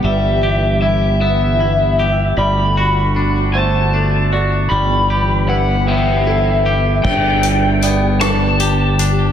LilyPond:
<<
  \new Staff \with { instrumentName = "Lead electric guitar" } { \time 6/8 \key g \major \tempo 4. = 51 e''4 e''8 e''4. | b''4 r8 a''4. | b''4 fis''8 <e'' g''>4. | g''4. a''4. | }
  \new Staff \with { instrumentName = "Felt piano" } { \time 6/8 \key g \major r2. | d''4 r8 c''4 d''8~ | d''8 r8 b'4 a'4 | e''4 d''8 b'4 r8 | }
  \new Staff \with { instrumentName = "Clean electric guitar" } { \time 6/8 \key g \major g8 g'8 e'8 b8 e'8 g'8 | g8 fis'8 d'8 a8 d'8 fis'8 | g8 g'8 e'8 b8 e'8 g'8 | g,4 b8 d'8 g'8 d'8 | }
  \new Staff \with { instrumentName = "Analog synth pad" } { \time 6/8 \key g \major <e g b g'>2. | <d a fis'>2. | <e g b g'>2. | <d g b g'>2. | }
  \new Staff \with { instrumentName = "Fingered electric bass" } { \clef bass \time 6/8 \key g \major g,,2. | g,,2. | g,,2. | g,,2. | }
  \new DrumStaff \with { instrumentName = "Drums" } \drummode { \time 6/8 r4. r4. | r4. r4. | r4. r4. | <cymc bd>8 hh8 hh8 <hh ss>8 hh8 hh8 | }
>>